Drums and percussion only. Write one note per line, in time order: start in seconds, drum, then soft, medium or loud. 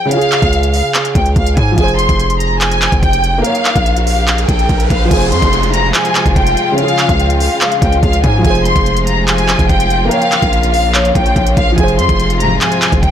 0.11 closed hi-hat medium
0.21 closed hi-hat medium
0.32 clap medium
0.32 closed hi-hat medium
0.42 kick loud
0.42 closed hi-hat medium
0.53 closed hi-hat medium
0.63 closed hi-hat medium
0.74 open hi-hat medium
0.94 clap loud
0.94 closed hi-hat medium
1.05 closed hi-hat medium
1.15 kick loud
1.15 closed hi-hat medium
1.26 closed hi-hat medium
1.36 kick loud
1.36 closed hi-hat medium
1.47 closed hi-hat medium
1.57 kick loud
1.57 closed hi-hat medium
1.78 kick loud
1.78 closed hi-hat medium
1.88 closed hi-hat soft
1.99 closed hi-hat medium
2.09 kick loud
2.09 closed hi-hat medium
2.20 closed hi-hat medium
2.30 closed hi-hat medium
2.40 closed hi-hat medium
2.61 clap loud
2.61 closed hi-hat medium
2.71 closed hi-hat medium
2.82 clap loud
2.82 closed hi-hat medium
2.92 kick loud
2.92 closed hi-hat medium
3.03 kick loud
3.03 closed hi-hat medium
3.13 closed hi-hat medium
3.24 closed hi-hat medium
3.44 closed hi-hat medium
3.55 closed hi-hat medium
3.65 clap medium
3.65 closed hi-hat medium
3.76 kick loud
3.76 closed hi-hat medium
3.86 closed hi-hat medium
3.96 closed hi-hat medium
4.07 open hi-hat medium
4.28 clap loud
4.28 closed hi-hat medium
4.38 closed hi-hat medium
4.49 kick loud
4.49 closed hi-hat medium
4.59 closed hi-hat medium
4.69 kick loud
4.69 closed hi-hat medium
4.80 closed hi-hat medium
4.90 kick loud
4.90 closed hi-hat medium
5.11 kick loud
5.11 closed hi-hat medium
5.11 crash loud
5.22 closed hi-hat medium
5.32 closed hi-hat medium
5.42 kick loud
5.42 closed hi-hat medium
5.53 closed hi-hat medium
5.63 closed hi-hat medium
5.74 closed hi-hat medium
5.94 clap loud
5.94 closed hi-hat medium
6.05 closed hi-hat medium
6.15 clap loud
6.15 closed hi-hat medium
6.26 kick loud
6.26 closed hi-hat medium
6.36 kick loud
6.36 closed hi-hat medium
6.47 closed hi-hat medium
6.57 closed hi-hat medium
6.78 closed hi-hat medium
6.88 closed hi-hat soft
6.99 clap medium
6.99 closed hi-hat medium
7.09 kick loud
7.09 closed hi-hat medium
7.20 closed hi-hat medium
7.30 closed hi-hat medium
7.40 open hi-hat medium
7.61 clap loud
7.61 closed hi-hat medium
7.72 closed hi-hat medium
7.82 kick loud
7.82 closed hi-hat medium
7.92 closed hi-hat medium
8.03 kick loud
8.03 closed hi-hat medium
8.13 closed hi-hat medium
8.24 kick loud
8.24 closed hi-hat medium
8.45 kick loud
8.45 closed hi-hat medium
8.55 closed hi-hat soft
8.65 closed hi-hat medium
8.76 kick loud
8.76 closed hi-hat medium
8.86 closed hi-hat medium
8.97 closed hi-hat medium
9.07 closed hi-hat medium
9.28 clap loud
9.28 closed hi-hat medium
9.38 closed hi-hat medium
9.49 clap loud
9.49 closed hi-hat medium
9.59 kick loud
9.59 closed hi-hat medium
9.69 kick loud
9.69 closed hi-hat medium
9.80 closed hi-hat medium
9.90 closed hi-hat medium
10.11 closed hi-hat medium
10.22 closed hi-hat medium
10.32 clap medium
10.32 closed hi-hat medium
10.42 kick loud
10.42 closed hi-hat medium
10.53 closed hi-hat medium
10.63 closed hi-hat medium
10.74 open hi-hat medium
10.95 clap loud
10.95 closed hi-hat medium
11.05 closed hi-hat medium
11.15 kick loud
11.15 closed hi-hat medium
11.26 closed hi-hat medium
11.36 kick loud
11.36 closed hi-hat medium
11.47 closed hi-hat medium
11.57 kick loud
11.57 closed hi-hat medium
11.78 kick loud
11.78 closed hi-hat medium
11.88 closed hi-hat soft
11.99 closed hi-hat medium
12.09 kick loud
12.09 closed hi-hat medium
12.20 closed hi-hat medium
12.30 closed hi-hat medium
12.40 closed hi-hat medium
12.61 clap loud
12.61 closed hi-hat medium
12.72 closed hi-hat medium
12.82 clap loud
12.82 closed hi-hat medium
12.92 kick loud
12.92 closed hi-hat medium
13.03 kick loud
13.03 closed hi-hat medium